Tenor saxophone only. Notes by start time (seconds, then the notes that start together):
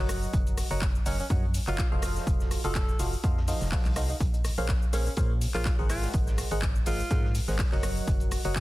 1.06 C#4
1.19 C#4
1.68 F4
2.64 A4
3.48 D#4
3.96 D#4
4.09 D#4
4.93 C#4
5.06 C#4
5.54 F4
5.90 F4
6.87 F4